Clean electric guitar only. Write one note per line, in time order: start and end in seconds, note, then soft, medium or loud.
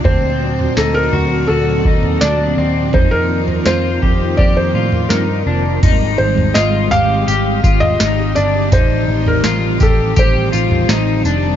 0.04 0.76 C4 medium
0.77 1.13 D#4 medium
1.13 1.48 F#4 medium
1.50 1.86 F#4 medium
1.86 2.21 D#4 medium
2.22 2.58 D4 medium
2.58 2.94 C4 medium
2.94 3.66 D#4 medium
3.66 4.02 F4 medium
4.02 4.38 G4 medium
4.39 4.75 G4 medium
4.75 5.11 F4 medium
5.11 5.46 D#4 medium
5.47 5.83 D4 medium
5.83 6.56 D#4 medium
6.55 6.92 F4 medium
6.92 7.27 G4 medium
7.28 7.63 G4 medium
7.64 8.00 F4 medium
8.00 8.36 D#4 medium
8.36 8.72 D4 medium
8.72 9.45 D#4 medium
9.44 9.80 F4 medium
9.81 10.15 G4 medium
10.17 10.52 G4 loud
10.52 10.89 F4 medium
10.89 11.25 D#4 medium
11.25 11.56 D4 medium